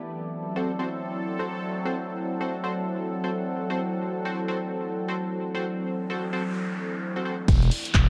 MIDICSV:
0, 0, Header, 1, 8, 480
1, 0, Start_track
1, 0, Tempo, 461538
1, 103, Time_signature, 4, 2, 24, 8
1, 8414, End_track
2, 0, Start_track
2, 0, Title_t, "Ambient pad"
2, 0, Program_c, 0, 92
2, 0, Note_on_c, 0, 64, 77
2, 0, Note_on_c, 0, 69, 72
2, 0, Note_on_c, 0, 74, 72
2, 0, Note_on_c, 0, 81, 74
2, 314, Note_on_c, 0, 78, 73
2, 2009, Note_off_c, 0, 81, 0
2, 7771, Note_off_c, 0, 64, 0
2, 7782, Note_off_c, 0, 69, 0
2, 7782, Note_off_c, 0, 74, 0
2, 7783, Note_off_c, 0, 78, 0
2, 7783, Note_on_c, 0, 64, 76
2, 8035, Note_on_c, 0, 69, 74
2, 8204, Note_on_c, 0, 79, 85
2, 8414, Note_off_c, 0, 64, 0
2, 8414, Note_off_c, 0, 69, 0
2, 8414, Note_off_c, 0, 79, 0
2, 8414, End_track
3, 0, Start_track
3, 0, Title_t, "Synth stab"
3, 0, Program_c, 1, 62
3, 583, Note_on_c, 1, 60, 92
3, 583, Note_on_c, 1, 66, 82
3, 583, Note_on_c, 1, 69, 81
3, 583, Note_on_c, 1, 72, 100
3, 735, Note_off_c, 1, 60, 0
3, 735, Note_off_c, 1, 66, 0
3, 735, Note_off_c, 1, 69, 0
3, 735, Note_off_c, 1, 72, 0
3, 823, Note_on_c, 1, 60, 91
3, 823, Note_on_c, 1, 66, 84
3, 823, Note_on_c, 1, 69, 83
3, 823, Note_on_c, 1, 72, 104
3, 920, Note_off_c, 1, 60, 0
3, 920, Note_off_c, 1, 66, 0
3, 920, Note_off_c, 1, 69, 0
3, 920, Note_off_c, 1, 72, 0
3, 1448, Note_on_c, 1, 60, 82
3, 1448, Note_on_c, 1, 66, 77
3, 1448, Note_on_c, 1, 69, 74
3, 1448, Note_on_c, 1, 72, 87
3, 1512, Note_off_c, 1, 60, 0
3, 1512, Note_off_c, 1, 66, 0
3, 1512, Note_off_c, 1, 69, 0
3, 1512, Note_off_c, 1, 72, 0
3, 1927, Note_on_c, 1, 66, 78
3, 1928, Note_on_c, 1, 60, 83
3, 1928, Note_on_c, 1, 69, 79
3, 1928, Note_on_c, 1, 72, 94
3, 2033, Note_off_c, 1, 66, 0
3, 2033, Note_off_c, 1, 69, 0
3, 2034, Note_off_c, 1, 60, 0
3, 2034, Note_off_c, 1, 72, 0
3, 2502, Note_on_c, 1, 60, 89
3, 2503, Note_on_c, 1, 66, 82
3, 2503, Note_on_c, 1, 69, 83
3, 2503, Note_on_c, 1, 72, 99
3, 2655, Note_off_c, 1, 60, 0
3, 2655, Note_off_c, 1, 66, 0
3, 2655, Note_off_c, 1, 69, 0
3, 2655, Note_off_c, 1, 72, 0
3, 2742, Note_on_c, 1, 60, 93
3, 2742, Note_on_c, 1, 66, 84
3, 2742, Note_on_c, 1, 69, 84
3, 2742, Note_on_c, 1, 72, 102
3, 2840, Note_off_c, 1, 60, 0
3, 2840, Note_off_c, 1, 66, 0
3, 2840, Note_off_c, 1, 69, 0
3, 2840, Note_off_c, 1, 72, 0
3, 3367, Note_on_c, 1, 72, 92
3, 3368, Note_on_c, 1, 60, 83
3, 3368, Note_on_c, 1, 66, 75
3, 3368, Note_on_c, 1, 69, 76
3, 3431, Note_off_c, 1, 60, 0
3, 3431, Note_off_c, 1, 66, 0
3, 3431, Note_off_c, 1, 69, 0
3, 3431, Note_off_c, 1, 72, 0
3, 3847, Note_on_c, 1, 66, 77
3, 3848, Note_on_c, 1, 60, 87
3, 3848, Note_on_c, 1, 69, 77
3, 3848, Note_on_c, 1, 72, 95
3, 3953, Note_off_c, 1, 60, 0
3, 3953, Note_off_c, 1, 66, 0
3, 3953, Note_off_c, 1, 69, 0
3, 3954, Note_off_c, 1, 72, 0
3, 4422, Note_on_c, 1, 60, 89
3, 4422, Note_on_c, 1, 66, 83
3, 4422, Note_on_c, 1, 69, 85
3, 4422, Note_on_c, 1, 72, 97
3, 4574, Note_off_c, 1, 72, 0
3, 4575, Note_off_c, 1, 60, 0
3, 4575, Note_off_c, 1, 66, 0
3, 4575, Note_off_c, 1, 69, 0
3, 4662, Note_on_c, 1, 60, 92
3, 4662, Note_on_c, 1, 66, 83
3, 4662, Note_on_c, 1, 69, 86
3, 4662, Note_on_c, 1, 72, 101
3, 4760, Note_off_c, 1, 60, 0
3, 4760, Note_off_c, 1, 66, 0
3, 4760, Note_off_c, 1, 69, 0
3, 4760, Note_off_c, 1, 72, 0
3, 5287, Note_on_c, 1, 60, 83
3, 5287, Note_on_c, 1, 66, 76
3, 5287, Note_on_c, 1, 69, 75
3, 5287, Note_on_c, 1, 72, 92
3, 5351, Note_off_c, 1, 60, 0
3, 5351, Note_off_c, 1, 66, 0
3, 5351, Note_off_c, 1, 69, 0
3, 5351, Note_off_c, 1, 72, 0
3, 5768, Note_on_c, 1, 60, 85
3, 5768, Note_on_c, 1, 66, 81
3, 5768, Note_on_c, 1, 69, 79
3, 5768, Note_on_c, 1, 72, 95
3, 5873, Note_off_c, 1, 60, 0
3, 5873, Note_off_c, 1, 69, 0
3, 5874, Note_off_c, 1, 66, 0
3, 5874, Note_off_c, 1, 72, 0
3, 6342, Note_on_c, 1, 60, 88
3, 6342, Note_on_c, 1, 66, 81
3, 6342, Note_on_c, 1, 69, 84
3, 6342, Note_on_c, 1, 72, 98
3, 6494, Note_off_c, 1, 69, 0
3, 6494, Note_off_c, 1, 72, 0
3, 6495, Note_off_c, 1, 60, 0
3, 6495, Note_off_c, 1, 66, 0
3, 6582, Note_on_c, 1, 60, 90
3, 6582, Note_on_c, 1, 66, 83
3, 6582, Note_on_c, 1, 69, 84
3, 6582, Note_on_c, 1, 72, 101
3, 6680, Note_off_c, 1, 60, 0
3, 6680, Note_off_c, 1, 66, 0
3, 6680, Note_off_c, 1, 69, 0
3, 6680, Note_off_c, 1, 72, 0
3, 7447, Note_on_c, 1, 60, 69
3, 7447, Note_on_c, 1, 66, 63
3, 7447, Note_on_c, 1, 69, 65
3, 7447, Note_on_c, 1, 72, 77
3, 7528, Note_off_c, 1, 60, 0
3, 7528, Note_off_c, 1, 66, 0
3, 7528, Note_off_c, 1, 69, 0
3, 7528, Note_off_c, 1, 72, 0
3, 7542, Note_on_c, 1, 69, 64
3, 7543, Note_on_c, 1, 60, 68
3, 7543, Note_on_c, 1, 66, 64
3, 7543, Note_on_c, 1, 72, 76
3, 7640, Note_off_c, 1, 60, 0
3, 7640, Note_off_c, 1, 66, 0
3, 7640, Note_off_c, 1, 69, 0
3, 7640, Note_off_c, 1, 72, 0
3, 8414, End_track
4, 0, Start_track
4, 0, Title_t, "Analog synth pad"
4, 0, Program_c, 2, 89
4, 102, Note_on_c, 2, 60, 74
4, 102, Note_on_c, 2, 69, 91
4, 103, Note_on_c, 2, 54, 81
4, 7741, Note_off_c, 2, 54, 0
4, 7741, Note_off_c, 2, 60, 0
4, 7741, Note_off_c, 2, 69, 0
4, 7782, Note_on_c, 2, 52, 86
4, 7782, Note_on_c, 2, 59, 80
4, 7782, Note_on_c, 2, 67, 96
4, 8414, Note_off_c, 2, 52, 0
4, 8414, Note_off_c, 2, 59, 0
4, 8414, Note_off_c, 2, 67, 0
4, 8414, End_track
5, 0, Start_track
5, 0, Title_t, "FM bass"
5, 0, Program_c, 3, 39
5, 7782, Note_on_c, 3, 28, 97
5, 8007, Note_off_c, 3, 28, 0
5, 8263, Note_on_c, 3, 28, 94
5, 8414, Note_off_c, 3, 28, 0
5, 8414, End_track
6, 0, Start_track
6, 0, Title_t, "Downlifter"
6, 0, Program_c, 4, 103
6, 7782, Note_on_c, 4, 60, 79
6, 8414, Note_off_c, 4, 60, 0
6, 8414, End_track
7, 0, Start_track
7, 0, Title_t, "Noise sweep"
7, 0, Program_c, 5, 103
7, 5862, Note_on_c, 5, 60, 73
7, 7782, Note_off_c, 5, 60, 0
7, 8414, End_track
8, 0, Start_track
8, 0, Title_t, "Drums"
8, 7782, Note_on_c, 9, 36, 117
8, 7783, Note_on_c, 9, 42, 68
8, 7886, Note_off_c, 9, 36, 0
8, 7887, Note_off_c, 9, 42, 0
8, 7928, Note_on_c, 9, 42, 38
8, 8022, Note_on_c, 9, 46, 110
8, 8032, Note_off_c, 9, 42, 0
8, 8126, Note_off_c, 9, 46, 0
8, 8168, Note_on_c, 9, 42, 54
8, 8262, Note_off_c, 9, 42, 0
8, 8262, Note_on_c, 9, 36, 105
8, 8262, Note_on_c, 9, 39, 126
8, 8262, Note_on_c, 9, 42, 70
8, 8366, Note_off_c, 9, 36, 0
8, 8366, Note_off_c, 9, 39, 0
8, 8366, Note_off_c, 9, 42, 0
8, 8414, End_track
0, 0, End_of_file